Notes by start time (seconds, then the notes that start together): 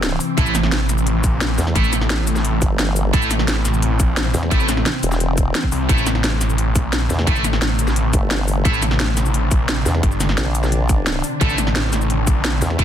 Already playing: A#1 C3 E3 C4
0.03 snare, closed hi-hat, cabasa
0.20 open hi-hat, cabasa
0.37 A1 A3 E4 A4, kick, closed hi-hat
0.46 cabasa
0.55 snare, closed hi-hat, cabasa
0.63 snare
0.72 snare, closed hi-hat
0.89 snare, closed hi-hat, cabasa
0.98 cabasa
1.07 closed hi-hat
1.24 A#1, kick, closed hi-hat, cabasa
1.41 snare, closed hi-hat, cabasa
1.58 E2, snare, open hi-hat, cabasa
1.67 snare
1.75 A1 A3 E4 A4, kick, closed hi-hat
1.84 cabasa
1.93 snare, closed hi-hat, cabasa
2.01 snare
2.10 snare, closed hi-hat
2.27 closed hi-hat, cabasa
2.36 snare, cabasa
2.45 closed hi-hat
2.62 G1, kick, closed hi-hat, cabasa
2.79 snare, closed hi-hat, cabasa
2.96 open hi-hat, cabasa
3.13 A1 A3 C4 E4 A4, kick, closed hi-hat
3.22 cabasa
3.31 snare, closed hi-hat, cabasa
3.39 snare
3.48 snare, closed hi-hat
3.65 snare, closed hi-hat, cabasa
3.74 cabasa
3.82 closed hi-hat
4.00 A#1, kick, closed hi-hat, cabasa
4.17 snare, closed hi-hat, cabasa
4.34 E2, snare, open hi-hat, cabasa
4.43 snare
4.51 A1 A3 E4 A4, kick, closed hi-hat
4.60 cabasa
4.69 snare, closed hi-hat, cabasa
4.77 snare
4.86 snare, closed hi-hat
5.03 E1, closed hi-hat, cabasa
5.12 snare, cabasa
5.20 closed hi-hat
5.38 kick, closed hi-hat, cabasa
5.55 snare, closed hi-hat, cabasa
5.63 kick
5.72 C2, open hi-hat, cabasa
5.89 A1 D3 A3 E4 A4, kick, closed hi-hat
5.98 cabasa
6.07 snare, closed hi-hat, cabasa
6.15 snare
6.24 snare, closed hi-hat
6.41 snare, closed hi-hat, cabasa
6.50 cabasa
6.58 closed hi-hat
6.76 A#1, kick, closed hi-hat, cabasa
6.93 snare, closed hi-hat, cabasa
7.10 E2, snare, open hi-hat, cabasa
7.19 snare
7.27 A1 A3 E4 A4, kick, closed hi-hat
7.36 cabasa
7.44 snare, closed hi-hat, cabasa
7.53 snare
7.62 snare, closed hi-hat
7.79 closed hi-hat, cabasa
7.88 snare, cabasa
7.96 closed hi-hat
8.13 G1, kick, closed hi-hat, cabasa
8.31 snare, closed hi-hat, cabasa
8.48 open hi-hat, cabasa
8.65 A1 A3 D4 E4 A4, kick, closed hi-hat
8.74 cabasa
8.82 snare, closed hi-hat, cabasa
8.91 snare
9.00 snare, closed hi-hat
9.17 snare, closed hi-hat, cabasa
9.26 cabasa
9.34 closed hi-hat
9.51 A#1, kick, closed hi-hat, cabasa
9.69 snare, closed hi-hat, cabasa
9.86 E2, snare, open hi-hat, cabasa
9.95 snare
10.03 G1, kick, closed hi-hat
10.12 cabasa
10.20 snare, closed hi-hat, cabasa
10.29 snare
10.38 A#1, snare, closed hi-hat
10.55 closed hi-hat, cabasa
10.63 snare, cabasa
10.72 closed hi-hat
10.89 kick, closed hi-hat, cabasa
11.07 snare, closed hi-hat, cabasa
11.24 open hi-hat, cabasa
11.41 A1 A3 E4 A4, kick, closed hi-hat
11.50 cabasa
11.58 snare, closed hi-hat, cabasa
11.67 snare
11.76 snare, closed hi-hat
11.93 snare, closed hi-hat, cabasa
12.01 cabasa
12.10 closed hi-hat
12.27 A#1, kick, closed hi-hat, cabasa
12.44 snare, closed hi-hat, cabasa
12.62 E2, snare, open hi-hat, cabasa
12.70 snare
12.79 A1 A3 E4 A4, kick, closed hi-hat